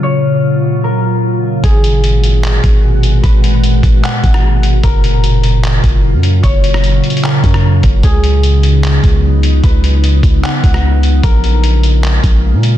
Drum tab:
HH |------------------------------------------------|x-----x-----x-----x-----x-----x-----------x-----|x-----x-----x-----x-----x-----x-----------x-----|x-----x-----x-----x-----x-----x-----------x-----|
CP |------------------------------------------------|------------------------x-----------------------|------------------------x-----------------------|------------------------x-----------------------|
SD |------------------------------------------------|------------------------------------------------|---------------------------------r--------------|------------------------------------------------|
BD |------------------------------------------------|o-----------------------------o-----------------|o-----------------o-----------o-----------------|o-----------------------------o-----------------|

HH |x-----x-----x-----x-x-x-x-----x-----------x-----|x-----x-----x-----x-----x-----x-----------x-----|x-----x-----x-----x-----x-----x-----------x-----|x-----x-----x-----x-----x-----x-----------x-----|
CP |------------------------x-----------------------|------------------------x-----------------------|------------------------x-----------------------|------------------------x-----------------------|
SD |---------r-----------------------r--------------|------------------------------------------------|---------------------------------r--------------|------------------------------------------------|
BD |o-----------------------------o-----------o-----|o-----------------------------o-----------------|o-----------------o-----------o-----------------|o-----------------------------o-----------------|